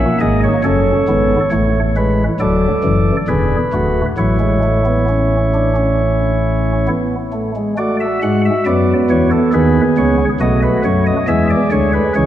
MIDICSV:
0, 0, Header, 1, 2, 480
1, 0, Start_track
1, 0, Key_signature, 3, "major"
1, 0, Tempo, 877193
1, 361, Time_signature, 4, 2, 24, 8
1, 1802, Tempo, 894188
1, 4682, Tempo, 877193
1, 6653, End_track
2, 0, Start_track
2, 0, Title_t, "Pipe organ"
2, 0, Program_c, 0, 19
2, 0, Note_on_c, 0, 58, 67
2, 0, Note_on_c, 0, 76, 65
2, 98, Note_off_c, 0, 76, 0
2, 113, Note_on_c, 0, 68, 74
2, 113, Note_on_c, 0, 75, 69
2, 115, Note_on_c, 0, 32, 67
2, 115, Note_on_c, 0, 44, 66
2, 220, Note_off_c, 0, 75, 0
2, 238, Note_on_c, 0, 73, 64
2, 264, Note_off_c, 0, 68, 0
2, 265, Note_off_c, 0, 32, 0
2, 265, Note_off_c, 0, 44, 0
2, 292, Note_off_c, 0, 58, 0
2, 339, Note_off_c, 0, 73, 0
2, 350, Note_on_c, 0, 42, 68
2, 350, Note_on_c, 0, 73, 65
2, 351, Note_on_c, 0, 30, 67
2, 351, Note_on_c, 0, 61, 77
2, 352, Note_on_c, 0, 69, 67
2, 502, Note_off_c, 0, 42, 0
2, 503, Note_off_c, 0, 30, 0
2, 503, Note_off_c, 0, 61, 0
2, 593, Note_on_c, 0, 32, 68
2, 593, Note_on_c, 0, 59, 77
2, 594, Note_on_c, 0, 44, 68
2, 744, Note_off_c, 0, 32, 0
2, 744, Note_off_c, 0, 59, 0
2, 745, Note_off_c, 0, 44, 0
2, 768, Note_off_c, 0, 69, 0
2, 820, Note_off_c, 0, 73, 0
2, 831, Note_on_c, 0, 33, 65
2, 831, Note_on_c, 0, 57, 77
2, 831, Note_on_c, 0, 73, 69
2, 832, Note_on_c, 0, 45, 65
2, 982, Note_off_c, 0, 57, 0
2, 982, Note_off_c, 0, 73, 0
2, 1075, Note_on_c, 0, 56, 75
2, 1075, Note_on_c, 0, 71, 64
2, 1225, Note_off_c, 0, 56, 0
2, 1225, Note_off_c, 0, 71, 0
2, 1246, Note_off_c, 0, 33, 0
2, 1247, Note_off_c, 0, 45, 0
2, 1312, Note_on_c, 0, 54, 82
2, 1313, Note_on_c, 0, 26, 67
2, 1314, Note_on_c, 0, 38, 71
2, 1314, Note_on_c, 0, 69, 70
2, 1314, Note_on_c, 0, 74, 70
2, 1464, Note_off_c, 0, 54, 0
2, 1465, Note_off_c, 0, 26, 0
2, 1465, Note_off_c, 0, 38, 0
2, 1552, Note_on_c, 0, 52, 69
2, 1553, Note_on_c, 0, 42, 60
2, 1554, Note_on_c, 0, 30, 63
2, 1705, Note_off_c, 0, 52, 0
2, 1706, Note_off_c, 0, 30, 0
2, 1706, Note_off_c, 0, 42, 0
2, 1732, Note_off_c, 0, 69, 0
2, 1732, Note_off_c, 0, 74, 0
2, 1795, Note_on_c, 0, 28, 60
2, 1795, Note_on_c, 0, 50, 70
2, 1796, Note_on_c, 0, 40, 60
2, 1796, Note_on_c, 0, 71, 61
2, 1797, Note_on_c, 0, 68, 63
2, 1946, Note_off_c, 0, 28, 0
2, 1946, Note_off_c, 0, 50, 0
2, 1947, Note_off_c, 0, 40, 0
2, 1948, Note_off_c, 0, 68, 0
2, 2037, Note_on_c, 0, 26, 61
2, 2037, Note_on_c, 0, 66, 66
2, 2038, Note_on_c, 0, 57, 68
2, 2039, Note_on_c, 0, 38, 60
2, 2188, Note_off_c, 0, 26, 0
2, 2188, Note_off_c, 0, 57, 0
2, 2188, Note_off_c, 0, 66, 0
2, 2189, Note_off_c, 0, 38, 0
2, 2212, Note_off_c, 0, 71, 0
2, 2276, Note_on_c, 0, 73, 57
2, 2277, Note_on_c, 0, 33, 59
2, 2277, Note_on_c, 0, 45, 59
2, 2277, Note_on_c, 0, 54, 63
2, 2278, Note_on_c, 0, 64, 59
2, 2383, Note_off_c, 0, 54, 0
2, 2395, Note_on_c, 0, 56, 65
2, 2502, Note_off_c, 0, 56, 0
2, 2520, Note_on_c, 0, 57, 61
2, 2625, Note_off_c, 0, 57, 0
2, 2640, Note_on_c, 0, 59, 60
2, 2745, Note_off_c, 0, 59, 0
2, 2765, Note_on_c, 0, 61, 64
2, 2915, Note_off_c, 0, 61, 0
2, 3009, Note_on_c, 0, 62, 60
2, 3112, Note_off_c, 0, 62, 0
2, 3125, Note_on_c, 0, 61, 61
2, 3643, Note_off_c, 0, 61, 0
2, 3724, Note_on_c, 0, 59, 61
2, 3729, Note_off_c, 0, 33, 0
2, 3729, Note_off_c, 0, 45, 0
2, 3729, Note_off_c, 0, 73, 0
2, 3730, Note_off_c, 0, 64, 0
2, 3875, Note_off_c, 0, 59, 0
2, 3967, Note_on_c, 0, 57, 63
2, 4071, Note_off_c, 0, 57, 0
2, 4092, Note_on_c, 0, 56, 60
2, 4193, Note_off_c, 0, 56, 0
2, 4208, Note_on_c, 0, 57, 85
2, 4209, Note_on_c, 0, 66, 70
2, 4209, Note_on_c, 0, 74, 66
2, 4311, Note_off_c, 0, 74, 0
2, 4331, Note_on_c, 0, 76, 69
2, 4356, Note_off_c, 0, 57, 0
2, 4432, Note_off_c, 0, 76, 0
2, 4450, Note_on_c, 0, 78, 71
2, 4451, Note_on_c, 0, 44, 83
2, 4452, Note_on_c, 0, 56, 80
2, 4551, Note_off_c, 0, 78, 0
2, 4571, Note_on_c, 0, 76, 69
2, 4597, Note_off_c, 0, 44, 0
2, 4597, Note_off_c, 0, 56, 0
2, 4671, Note_off_c, 0, 76, 0
2, 4683, Note_on_c, 0, 74, 64
2, 4684, Note_on_c, 0, 42, 83
2, 4684, Note_on_c, 0, 59, 68
2, 4685, Note_on_c, 0, 54, 85
2, 4832, Note_off_c, 0, 74, 0
2, 4833, Note_off_c, 0, 42, 0
2, 4834, Note_off_c, 0, 54, 0
2, 4923, Note_on_c, 0, 40, 80
2, 4924, Note_on_c, 0, 73, 69
2, 4926, Note_on_c, 0, 52, 79
2, 5028, Note_off_c, 0, 73, 0
2, 5030, Note_off_c, 0, 66, 0
2, 5040, Note_on_c, 0, 69, 61
2, 5073, Note_off_c, 0, 40, 0
2, 5074, Note_off_c, 0, 52, 0
2, 5145, Note_off_c, 0, 69, 0
2, 5160, Note_on_c, 0, 39, 90
2, 5161, Note_on_c, 0, 68, 76
2, 5162, Note_on_c, 0, 51, 93
2, 5164, Note_on_c, 0, 71, 76
2, 5311, Note_off_c, 0, 39, 0
2, 5312, Note_off_c, 0, 51, 0
2, 5313, Note_off_c, 0, 71, 0
2, 5402, Note_on_c, 0, 73, 68
2, 5403, Note_on_c, 0, 37, 81
2, 5403, Note_on_c, 0, 49, 82
2, 5511, Note_off_c, 0, 59, 0
2, 5552, Note_off_c, 0, 49, 0
2, 5552, Note_off_c, 0, 73, 0
2, 5553, Note_off_c, 0, 37, 0
2, 5576, Note_off_c, 0, 68, 0
2, 5637, Note_on_c, 0, 35, 80
2, 5637, Note_on_c, 0, 66, 70
2, 5639, Note_on_c, 0, 47, 81
2, 5639, Note_on_c, 0, 75, 72
2, 5641, Note_on_c, 0, 57, 67
2, 5745, Note_off_c, 0, 75, 0
2, 5758, Note_on_c, 0, 71, 69
2, 5788, Note_off_c, 0, 35, 0
2, 5789, Note_off_c, 0, 47, 0
2, 5864, Note_off_c, 0, 71, 0
2, 5879, Note_on_c, 0, 54, 84
2, 5880, Note_on_c, 0, 42, 83
2, 5880, Note_on_c, 0, 73, 71
2, 5985, Note_off_c, 0, 73, 0
2, 5998, Note_on_c, 0, 75, 69
2, 6029, Note_off_c, 0, 54, 0
2, 6030, Note_off_c, 0, 42, 0
2, 6052, Note_off_c, 0, 66, 0
2, 6054, Note_off_c, 0, 57, 0
2, 6104, Note_off_c, 0, 75, 0
2, 6117, Note_on_c, 0, 40, 83
2, 6117, Note_on_c, 0, 76, 68
2, 6118, Note_on_c, 0, 52, 89
2, 6118, Note_on_c, 0, 56, 74
2, 6118, Note_on_c, 0, 68, 73
2, 6223, Note_off_c, 0, 76, 0
2, 6237, Note_on_c, 0, 74, 78
2, 6268, Note_off_c, 0, 40, 0
2, 6268, Note_off_c, 0, 52, 0
2, 6343, Note_off_c, 0, 74, 0
2, 6356, Note_on_c, 0, 50, 90
2, 6357, Note_on_c, 0, 73, 76
2, 6358, Note_on_c, 0, 38, 95
2, 6462, Note_off_c, 0, 73, 0
2, 6475, Note_on_c, 0, 71, 71
2, 6506, Note_off_c, 0, 50, 0
2, 6507, Note_off_c, 0, 38, 0
2, 6532, Note_off_c, 0, 56, 0
2, 6581, Note_off_c, 0, 71, 0
2, 6594, Note_on_c, 0, 52, 78
2, 6595, Note_on_c, 0, 73, 73
2, 6596, Note_on_c, 0, 37, 91
2, 6596, Note_on_c, 0, 49, 90
2, 6653, Note_off_c, 0, 37, 0
2, 6653, Note_off_c, 0, 49, 0
2, 6653, Note_off_c, 0, 52, 0
2, 6653, Note_off_c, 0, 68, 0
2, 6653, Note_off_c, 0, 73, 0
2, 6653, End_track
0, 0, End_of_file